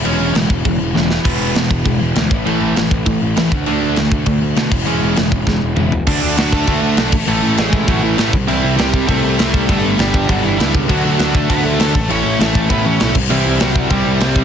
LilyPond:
<<
  \new Staff \with { instrumentName = "Lead electric guitar" } { \time 4/4 \key d \lydian \tempo 4 = 199 r1 | r1 | r1 | r1 |
r1 | <d' d''>4 <fis fis'>8 <a a'>2~ <a a'>8 | <a a'>4 <gis gis'>4 <fis fis'>8 <e e'>4 r8 | <e e'>4 <g g'>4 <a a'>2 |
<a a'>4 <g g'>4 <fis fis'>8 <e e'>4 r8 | <fis fis'>4. <a a'>8 <b b'>8 <a a'>4 <a a'>8 | <cis' cis''>4 <a a'>4 <b b'>8 <cis' cis''>4 r8 | <e e'>4 <fis fis'>4 <g g'>2 | }
  \new Staff \with { instrumentName = "Overdriven electric guitar" } { \time 4/4 \key d \lydian <e gis cis' e'>2. <e gis cis' e'>8 r8 | <e gis b e'>2.~ <e gis b e'>8 <a, e a cis' e'>8~ | <a, e a cis' e'>2. <a, e a cis' e'>8 <d a d' fis'>8~ | <d a d' fis'>2. <d a d' fis'>8 <e gis cis' e'>8~ |
<e gis cis' e'>2. <e gis cis' e'>8 r8 | r1 | r1 | r1 |
r1 | <d a d' fis'>4 <d a d' fis'>4 <d a d' fis'>4 <d a d' fis'>8 r8 | <a, e a cis' e'>4 <a, e a cis' e'>4 <a, e a cis' e'>4 <a, e a cis' e'>8 r8 | <c g c' e'>4 <c g c' e'>4 <c g c' e'>4 <c g c' e'>4 | }
  \new Staff \with { instrumentName = "Distorted electric guitar" } { \clef bass \time 4/4 \key d \lydian <e gis cis'>4 <e gis>8 r8 <e gis>8 r8 <e gis>8 r8 | <e gis b>4 <e gis>8 r8 <e gis>8 r8 <e gis>8 r8 | <a, e a>4 <a, e>8 r8 <a, e>8 r8 <a, e>8 r8 | <d a d'>4 <d a>8 r8 <d a>8 r8 <d a>8 r8 |
<e gis cis'>4 <e gis>8 r8 <e gis>8 r8 <e gis>8 r8 | <d a d' fis'>4 <d a d' fis'>4 <d a d' fis'>4 <d a d' fis'>8 r8 | <a, e a cis' e'>4 <a, e a cis' e'>4 <a, e a cis' e'>4 <a, e a cis' e'>8 r8 | <c g c' e'>4 <c g c' e'>4 <c g c' e'>4 <c g c' e'>4 |
<g, d g b d'>4 <g, d g b d'>4 <g, d g b d'>4 <g, d g b d'>4 | <d fis a d'>4 <d fis a d'>4 <d fis a d'>4 <d fis a d'>8 r8 | <a, e a cis' e'>4 <a, e a cis' e'>4 <a, e a cis' e'>4 <a, e a cis' e'>8 r8 | <c g c' e'>4 <c g c' e'>4 <c g c' e'>4 <c g c' e'>4 | }
  \new Staff \with { instrumentName = "Overdriven electric guitar" } { \clef bass \time 4/4 \key d \lydian <cis gis cis'>4 <cis gis>8 r8 <cis gis>8 r8 <cis gis>8 r8 | <e, b, e>4 <e, b,>8 r8 <e, b,>8 r8 <e, b,>8 r8 | <a, e a>4 <a, e>8 r8 <a, e>8 r8 <a, e>8 r8 | <d a d'>4 <d a>8 r8 <d a>8 r8 <d a>8 r8 |
<cis gis cis'>4 <cis gis>8 r8 <cis gis>8 r8 <cis gis>8 r8 | <d a d'>4 <d a d'>4 <d a d'>4 <d a d'>8 r8 | <a, e a>4 <a, e a>4 <a, e a>4 <a, e a>8 r8 | <c g c'>4 <c g c'>4 <c g c'>4 <c g c'>4 |
<g, d g>4 <g, d g>4 <g, d g>4 <g, d g>4 | <d a d'>4 <d a d'>4 <d a d'>4 <d a d'>8 r8 | <a, e a>4 <a, e a>4 <a, e a>4 <a, e a>8 r8 | <c g c'>4 <c g c'>4 <c g c'>4 <c g c'>4 | }
  \new Staff \with { instrumentName = "Picked electric bass" } { \clef bass \time 4/4 \key d \lydian e,,8 e,,8 e,,8 e,,8 e,,8 e,,8 e,,4 | e,,8 e,,8 e,,8 e,,8 e,,8 e,,8 d,8 a,,8 | a,,8 a,,8 a,,8 a,,8 a,,8 a,,8 a,,8 d,8 | d,8 d,8 d,8 d,8 d,8 d,8 b,8 e,,8 |
e,,8 e,,8 e,,8 e,,8 e,,8 e,,8 e,,4 | d,8 d,8 d,4 d,8 d,8 b,,8 a,,8 | a,,8 a,,8 a,,4 a,,8 a,,8 a,,8 c,8 | c,8 c,8 c,4 c,8 c,8 c,4 |
g,,8 g,,8 g,,4 g,,8 g,,8 cis,4 | d,8 d,8 d,4 d,8 d,8 d,8 a,,8 | a,,8 a,,8 a,,4 a,,8 a,,8 b,,8 c,8 | c,8 c,8 c,4 c,8 c,8 c,4 | }
  \new DrumStaff \with { instrumentName = "Drums" } \drummode { \time 4/4 cymc4 <cymc sn>8 bd8 <cymc bd>4 sn8 sn8 | <cymc bd>4 <cymc sn>8 bd8 <cymc bd>4 <cymc sn>8 bd8 | cymc4 <cymc sn>8 bd8 <cymc bd>4 <cymc sn>8 bd8 | cymc4 <cymc sn>8 bd8 <cymc bd>4 <cymc sn>8 <cymc bd>8 |
cymc4 <cymc sn>8 bd8 <bd sn>4 toml8 tomfh8 | <cymc bd>4 <cymc sn>8 bd8 <cymc bd>4 <cymc sn>8 <cymc bd>8 | cymc4 <cymc sn>8 bd8 <cymc bd>4 <cymc sn>8 bd8 | cymc4 <cymc sn>8 bd8 <cymc bd>4 <cymc sn>8 bd8 |
<cymc bd>4 <cymc sn>8 bd8 <cymc bd>4 <cymc sn>8 bd8 | <cymc bd>4 <cymc sn>8 bd8 <cymc bd>4 <cymc sn>8 bd8 | cymc4 <cymc sn>8 bd8 <cymc bd>4 <cymc sn>8 <cymc bd>8 | cymc4 <cymc sn>8 bd8 <cymc bd>4 <cymc sn>8 bd8 | }
>>